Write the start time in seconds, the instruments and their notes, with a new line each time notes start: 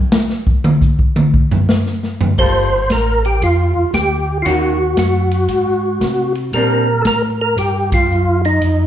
0.12 snare
0.29 snare
0.47 kick
0.64 mid tom
0.81 kick, hi-hat pedal
0.99 kick
1.16 mid tom
1.34 kick
1.51 floor tom
1.69 snare
1.86 snare, hi-hat pedal
2.03 snare
2.21 floor tom
2.38 tonewheel organ G1 C5, hollow-body jazz guitar G3 A#3 F4 A4, kick, crash
2.90 tonewheel organ A1 A#4, kick, snare, hi-hat pedal, ride
3.25 tonewheel organ G4, ride
3.42 tonewheel organ F2 F4, kick, ride
3.76 tonewheel organ F2
3.93 tonewheel organ D2 G4, kick, snare, hi-hat pedal, ride
4.42 tonewheel organ D#2 F4 F#4, hollow-body jazz guitar D#3 A#3, kick, ride
4.46 hollow-body jazz guitar C#4 F#4
4.97 tonewheel organ F#2 F#4, kick, snare, hi-hat pedal, ride
5.31 ride
5.48 tonewheel organ G#2, kick, ride
6.01 tonewheel organ C3, kick, snare, hi-hat pedal, ride
6.35 ride
6.53 tonewheel organ A#2 A#4, hollow-body jazz guitar G3 C4 D4, kick, ride
7.02 tonewheel organ A2 A4, kick, snare, hi-hat pedal, ride
7.07 tonewheel organ A#4
7.41 tonewheel organ A#4
7.57 tonewheel organ G2 G4, kick, ride
7.92 tonewheel organ F4, kick, ride
8.09 tonewheel organ F#2, hi-hat pedal
8.45 tonewheel organ D#4, ride
8.61 tonewheel organ F2, kick, ride